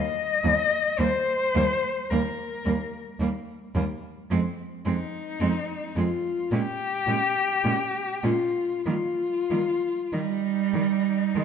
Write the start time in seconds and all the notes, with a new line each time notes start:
Already playing: D#5
0.44 D#2 G3 A#3
0.98 D#2 G3 A#3 C5
1.54 D#2 G3 A#3
2.10 D#2 G3 A#3 A#4
2.65 D#2 G3 A#3
3.20 D#2 G3 A#3
3.75 D#2 G3 A#3
4.31 F2 G#3 C4
4.85 F2 G#3 C4 D#4
5.40 F2 G#3 C4
5.96 F2 G#3 C4 F4
6.51 A#2 G#3 C#4 G4
7.07 A#2 G#3 C#4
7.64 A#2 G#3 C#4
8.23 A#2 G#3 C#4 F4
8.86 D#3 G3 A#3 F4
9.51 D#3 G3 A#3
10.13 D#3 G3 D#4
10.74 D#3 G3
11.35 D#3 G3 G#3